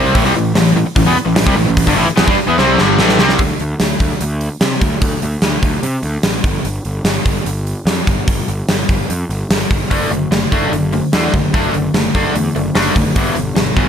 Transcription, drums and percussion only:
0.15 kick, open hi-hat
0.25 snare
0.55 snare, open hi-hat
0.96 kick, open hi-hat
1.36 snare, open hi-hat
1.47 kick
1.77 kick, open hi-hat
1.87 kick, snare
2.17 snare, open hi-hat
2.28 kick
2.58 snare
2.78 snare
2.99 snare
3.09 snare
3.19 snare
3.29 snare
3.39 kick, open hi-hat
3.60 open hi-hat
3.80 snare, open hi-hat
4.00 kick, open hi-hat
4.21 open hi-hat
4.41 open hi-hat
4.61 snare, open hi-hat
4.81 kick, open hi-hat
5.02 kick, open hi-hat
5.22 open hi-hat
5.42 snare, open hi-hat
5.63 kick, open hi-hat
5.83 open hi-hat
6.03 open hi-hat
6.23 snare, open hi-hat
6.44 kick, open hi-hat
6.65 open hi-hat
6.85 open hi-hat
7.05 snare, open hi-hat
7.26 kick, open hi-hat
7.46 open hi-hat
7.67 open hi-hat
7.87 snare, open hi-hat
8.07 kick, open hi-hat
8.28 kick, open hi-hat
8.48 open hi-hat
8.69 snare, open hi-hat
8.89 kick, open hi-hat
9.10 open hi-hat
9.30 open hi-hat
9.51 snare, open hi-hat
9.71 kick, open hi-hat
9.91 kick, open hi-hat
10.12 open hi-hat
10.32 snare, open hi-hat
10.52 kick, open hi-hat
10.73 open hi-hat
10.93 open hi-hat
11.13 snare, open hi-hat
11.34 kick, open hi-hat
11.54 kick, open hi-hat
11.74 open hi-hat
11.94 snare, open hi-hat
12.15 kick, open hi-hat
12.35 open hi-hat
12.56 open hi-hat
12.75 snare, open hi-hat
12.96 kick, open hi-hat
13.16 kick, open hi-hat
13.36 open hi-hat
13.56 snare, open hi-hat
13.77 kick, open hi-hat

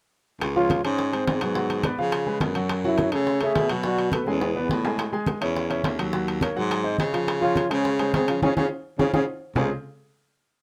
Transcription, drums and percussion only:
0.41 high bongo, high conga, high timbale
0.56 high bongo, high conga
0.70 high bongo, high conga, high timbale
0.85 high conga, high timbale
0.99 high bongo, high conga
1.13 high bongo, high conga, high timbale
1.27 high bongo, low bongo, high conga, high timbale, low timbale
1.41 high bongo, high conga, high timbale
1.55 high bongo, high conga
1.70 high bongo, high conga, high timbale
1.83 high bongo, high conga, high timbale
1.98 high bongo, high conga
2.12 high bongo, high conga, high timbale
2.27 high conga
2.40 high bongo, low bongo, high conga, high timbale, low timbale
2.55 high bongo, high conga, high timbale
2.69 high bongo, high conga, high timbale
2.84 high bongo, high conga
2.98 high bongo, high conga, high timbale
3.12 high conga, high timbale
3.27 high bongo, high conga
3.41 high bongo, high conga, high timbale
3.55 high bongo, low bongo, high conga, high timbale, low timbale
3.69 high bongo, high conga, high timbale
3.84 high bongo, high conga
3.98 high bongo, high conga, high timbale
4.12 high bongo, high conga, high timbale
4.26 high bongo, high conga
4.41 high bongo, high conga, high timbale
4.55 high conga
4.69 high bongo, low bongo, high conga
4.84 high bongo, high conga, low timbale
4.97 high bongo, high conga, high timbale
5.13 high bongo, high conga
5.26 high bongo, high conga, high timbale
5.41 high conga, high timbale
5.56 high bongo, high conga
5.70 high bongo, high conga, high timbale
5.84 high bongo, low bongo, high conga, high timbale, low timbale
5.99 high bongo, high conga, high timbale
6.13 high bongo, high conga
6.27 high bongo, high conga, high timbale
6.41 high bongo, high conga, high timbale
6.56 high bongo, high conga
6.70 high bongo, high conga, high timbale
6.84 high conga
6.98 high bongo, low bongo, high conga, high timbale
7.13 high bongo, high conga, high timbale
7.27 high bongo, high conga, high timbale
7.42 high bongo, high conga
7.56 high bongo, high conga, high timbale
7.70 high conga, high timbale
7.85 high bongo, high conga
7.99 high bongo, high conga, high timbale
8.14 high bongo, low bongo, high conga, high timbale, low timbale
8.28 high bongo, high conga, high timbale
8.42 low bongo, high conga, high timbale
8.57 low bongo, high conga, high timbale
8.99 low bongo, high conga, high timbale
9.13 low bongo, high conga, high timbale
9.55 low bongo, low conga, low timbale

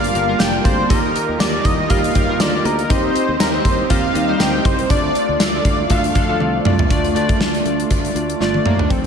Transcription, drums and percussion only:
0.04 closed hi-hat
0.15 closed hi-hat
0.40 snare, closed hi-hat, tambourine
0.65 kick, closed hi-hat
0.90 kick, closed hi-hat
1.16 closed hi-hat
1.40 snare, closed hi-hat, tambourine
1.65 kick, closed hi-hat
1.90 kick, closed hi-hat
2.04 closed hi-hat
2.15 kick, closed hi-hat
2.40 snare, closed hi-hat, tambourine
2.65 closed hi-hat
2.79 closed hi-hat
2.90 kick, closed hi-hat
3.16 closed hi-hat
3.40 snare, closed hi-hat, tambourine
3.65 kick, closed hi-hat
3.90 kick, closed hi-hat
4.15 closed hi-hat
4.40 snare, closed hi-hat, tambourine
4.65 kick, closed hi-hat
4.79 closed hi-hat
4.90 kick, closed hi-hat
5.15 closed hi-hat
5.40 snare, closed hi-hat, tambourine
5.65 kick, closed hi-hat
5.90 kick, closed hi-hat
6.04 closed hi-hat
6.15 kick, closed hi-hat
6.40 high tom
6.65 mid tom
6.79 floor tom
6.90 kick, closed hi-hat
7.04 closed hi-hat
7.16 closed hi-hat
7.29 kick, closed hi-hat
7.41 snare
7.54 closed hi-hat
7.66 closed hi-hat
7.80 closed hi-hat
7.91 kick, closed hi-hat
8.05 closed hi-hat
8.16 closed hi-hat
8.30 closed hi-hat
8.41 snare
8.54 high tom
8.66 mid tom
8.79 floor tom
8.90 kick, closed hi-hat

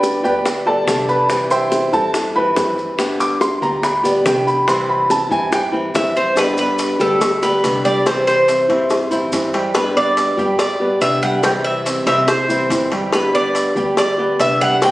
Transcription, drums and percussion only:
0.03 high bongo, maracas
0.25 maracas
0.46 high bongo, maracas
0.88 high bongo, low bongo, maracas
1.09 maracas
1.30 high bongo, maracas
1.51 maracas
1.72 high bongo, maracas
1.93 high bongo, maracas
2.14 high bongo, maracas
2.36 high bongo
2.56 high bongo, low bongo, maracas
2.78 high bongo, maracas
2.99 high bongo, maracas
3.20 maracas
3.41 high bongo, maracas
3.62 maracas
3.83 high bongo, maracas
4.05 maracas
4.26 high bongo, low bongo, maracas
4.48 maracas
4.68 high bongo, maracas
5.10 high bongo, maracas
5.31 high bongo, maracas
5.52 high bongo, maracas
5.74 high bongo
5.95 high bongo, low bongo, maracas
6.16 high bongo, maracas
6.37 cowbell, maracas
6.57 maracas
6.79 cowbell, maracas
7.00 maracas
7.21 cowbell, maracas
7.43 maracas
7.64 cowbell, maracas
7.86 maracas
8.06 cowbell, maracas
8.28 maracas
8.48 cowbell, maracas
8.69 cowbell, maracas
8.90 cowbell, maracas
9.11 maracas
9.32 cowbell, maracas
9.53 cowbell, maracas
9.75 cowbell, maracas
10.17 cowbell, maracas
10.39 maracas
10.59 cowbell, maracas
11.01 cowbell, maracas
11.22 maracas
11.43 cowbell, maracas
11.86 cowbell, maracas
12.07 cowbell, maracas
12.28 cowbell, maracas
12.50 maracas
12.70 cowbell, maracas
12.92 cowbell, maracas
13.13 cowbell, maracas
13.55 cowbell, maracas
13.76 maracas
13.97 cowbell, maracas
14.40 cowbell, maracas
14.61 maracas
14.82 cowbell, maracas

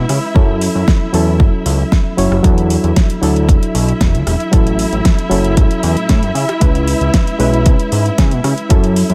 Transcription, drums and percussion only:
0.09 cross-stick, open hi-hat
0.36 kick
0.61 open hi-hat
0.88 kick, snare
1.14 open hi-hat
1.40 kick
1.66 open hi-hat
1.92 kick, snare
2.18 open hi-hat
2.32 cross-stick
2.44 kick, closed hi-hat
2.58 closed hi-hat
2.70 open hi-hat
2.84 closed hi-hat
2.96 kick, snare, closed hi-hat
3.10 closed hi-hat
3.23 open hi-hat
3.36 closed hi-hat
3.49 kick, closed hi-hat
3.63 closed hi-hat
3.75 open hi-hat
3.89 closed hi-hat
4.01 kick, snare, closed hi-hat
4.15 closed hi-hat
4.27 cross-stick, open hi-hat
4.40 closed hi-hat
4.53 kick, closed hi-hat
4.67 closed hi-hat
4.79 open hi-hat
4.93 closed hi-hat
5.05 kick, snare, closed hi-hat
5.19 closed hi-hat
5.31 open hi-hat
5.44 closed hi-hat
5.57 kick, closed hi-hat
5.71 closed hi-hat
5.83 open hi-hat
5.97 closed hi-hat
6.09 kick, snare, closed hi-hat
6.23 closed hi-hat
6.35 open hi-hat
6.49 cross-stick, closed hi-hat
6.61 kick, closed hi-hat
6.75 closed hi-hat
6.87 open hi-hat
7.01 closed hi-hat
7.14 kick, snare, closed hi-hat
7.27 closed hi-hat
7.40 open hi-hat
7.54 closed hi-hat
7.66 kick, closed hi-hat
7.79 closed hi-hat
7.92 open hi-hat
8.06 closed hi-hat
8.18 kick, snare, closed hi-hat
8.31 closed hi-hat
8.44 cross-stick, open hi-hat
8.58 closed hi-hat
8.70 kick, closed hi-hat
8.84 closed hi-hat
8.96 open hi-hat
9.10 closed hi-hat

